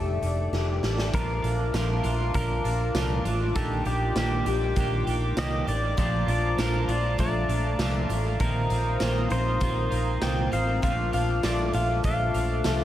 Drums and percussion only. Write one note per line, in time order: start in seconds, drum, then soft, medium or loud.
0.22 closed hi-hat soft
0.53 snare soft
0.83 snare medium
0.98 snare medium
1.14 kick loud
1.14 closed hi-hat medium
1.44 closed hi-hat soft
1.74 snare medium
1.74 closed hi-hat medium
1.74 tambourine medium
2.04 closed hi-hat soft
2.34 kick medium
2.34 closed hi-hat medium
2.65 closed hi-hat soft
2.95 snare loud
2.95 closed hi-hat medium
2.95 tambourine medium
3.25 closed hi-hat medium
3.55 kick loud
3.55 closed hi-hat medium
3.85 closed hi-hat soft
4.16 snare loud
4.16 closed hi-hat medium
4.16 tambourine medium
4.46 closed hi-hat medium
4.76 kick loud
4.76 closed hi-hat medium
5.07 closed hi-hat soft
5.37 snare loud
5.37 closed hi-hat medium
5.37 tambourine medium
5.68 closed hi-hat medium
5.98 kick loud
5.98 closed hi-hat medium
6.28 closed hi-hat soft
6.58 snare medium
6.58 closed hi-hat medium
6.58 tambourine medium
6.89 closed hi-hat medium
7.18 kick medium
7.18 closed hi-hat medium
7.49 closed hi-hat soft
7.79 snare loud
7.79 closed hi-hat medium
7.79 tambourine medium
8.10 closed hi-hat medium
8.40 kick loud
8.40 closed hi-hat medium
8.70 closed hi-hat soft
9.00 snare loud
9.00 closed hi-hat medium
9.00 tambourine medium
9.30 closed hi-hat medium
9.60 kick medium
9.60 closed hi-hat medium
9.92 closed hi-hat soft
10.22 snare loud
10.22 closed hi-hat medium
10.22 tambourine medium
10.53 closed hi-hat medium
10.83 kick loud
10.83 closed hi-hat medium
11.13 closed hi-hat soft
11.43 snare loud
11.43 closed hi-hat medium
11.43 tambourine medium
11.73 closed hi-hat soft
12.04 kick medium
12.04 closed hi-hat medium
12.34 closed hi-hat soft
12.64 snare loud
12.64 closed hi-hat medium
12.64 tambourine medium